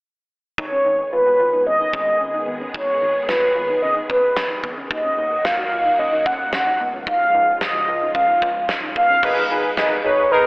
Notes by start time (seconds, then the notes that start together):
0.58 G#1 D#3 G#3 B3 D#4 G#4 C#5, kick
0.72 C#4
0.85 G#1 D#4
1.12 G#1 F4 B4
1.26 F#4
1.39 G#1 F4
1.53 D#4
1.66 G#1 C#4 D#5
1.80 D#4
1.93 G#1 C#4 D#5, kick
2.20 G#1 C#4
2.34 D#4
2.47 G#1 B3
2.61 C#4
2.74 G#1 D#4 C#5, kick
2.88 C#4
3.01 G#1 D#4
3.28 G#1 F4 B4, snare
3.42 F#4
3.55 G#1 F4
3.69 D#4
3.82 G#1 C#4 D#5
3.96 D#4
4.10 G#1 C#4 B4, kick
4.36 G#1 C#4, snare
4.50 D#4
4.64 G#1 B3, kick
4.77 C#4
4.91 D#2 D#3 F#3 A#3 D#4 F#4 D#5, kick
5.04 C#4
5.18 D#2 D#4
5.45 D#2 F4 F5, snare
5.58 F#4
5.72 D#2 F4
5.85 D#4
5.99 D#2 C#4 D#5
6.12 D#4
6.26 D#2 C#4 F#5, kick
6.53 D#2 C#4, snare
6.66 D#4
6.80 C#2 C#3 F3 G#3 B3 F4
6.93 C#4
7.07 D#4 F5, kick
7.20 C#4
7.34 C#2 D#4
7.61 C#2 F4 D#5, snare
7.75 F#4
7.88 C#2 F4
8.02 D#4
8.15 C#2 C#4 F5, kick
8.29 D#4
8.42 C#2 C#4, kick
8.69 C#2 C#4, snare
8.82 D#4
8.96 C#2 B3 F5, kick
9.10 C#4
9.23 G#1 D#3 G#3 B3 D#4 G#4 B4, kick, crash
9.50 G#1 D#4 G#4 B4
9.77 G#1 D#4 G#4 B4 D#5, snare
10.04 G#1 D#4 G#4 B4 C#5
10.31 G#1 D#4 G#4 A#4 B4